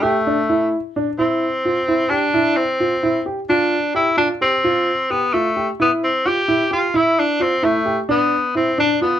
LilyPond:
<<
  \new Staff \with { instrumentName = "Grand piano" } { \time 5/8 \key c \major \tempo 4 = 130 g'8 d'8 e'4 d'8 | e'4 f'8 e'8 g'8 | e'4 f'8 e'8 g'8 | f'4 g'8 f'8 g'8 |
f'4 g'8 f'8 g'8 | e'4 f'8 e'8 g'8 | e'4 f'8 e'8 g'8 | d'4 e'8 d'8 f'8 | }
  \new Staff \with { instrumentName = "Tenor saxophone" } { \time 5/8 \key c \major a4. r4 | c'2 d'8~ | d'8 c'4. r8 | d'4 e'8 d'8 c'8~ |
c'4 b8 a8. r16 | b8 c'8 g'4 f'8 | e'8 d'8 c'8 a8. r16 | b4 c'8 d'8 b8 | }
>>